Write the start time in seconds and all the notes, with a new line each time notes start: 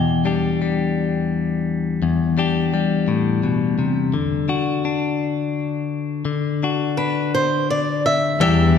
Already playing: E2 G5
0.25 G3 D4 G4
0.62 G3
2.02 E2
2.38 G3 D4 G4
2.74 G3
3.08 A2
3.43 B2
3.79 C3
4.14 D3
4.49 D4 F#4
4.85 D4
6.25 D3
6.63 D4 F#4
6.97 D4 B4
7.34 C5
7.70 D5
8.06 E5
8.39 E2 E3 G3 D4 G4 E5